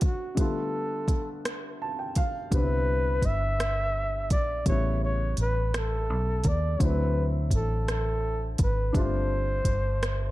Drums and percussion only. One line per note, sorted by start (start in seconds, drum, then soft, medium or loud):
0.01 kick medium
0.01 closed hi-hat soft
0.37 kick loud
0.37 closed hi-hat medium
1.08 kick medium
1.08 closed hi-hat medium
1.45 cross-stick medium
1.45 closed hi-hat medium
2.15 kick medium
2.15 closed hi-hat medium
2.52 kick loud
2.52 closed hi-hat medium
3.22 kick medium
3.22 closed hi-hat medium
3.60 cross-stick medium
3.60 closed hi-hat medium
4.30 kick medium
4.30 closed hi-hat medium
4.66 kick loud
4.66 closed hi-hat medium
5.37 closed hi-hat medium
5.74 cross-stick medium
5.74 closed hi-hat medium
6.44 kick medium
6.44 closed hi-hat medium
6.80 kick loud
6.80 closed hi-hat medium
7.51 kick medium
7.51 closed hi-hat medium
7.88 cross-stick medium
7.88 closed hi-hat medium
8.58 kick medium
8.58 closed hi-hat medium
8.94 kick loud
8.94 closed hi-hat medium
9.65 kick medium
9.65 closed hi-hat medium
10.03 cross-stick loud
10.03 closed hi-hat medium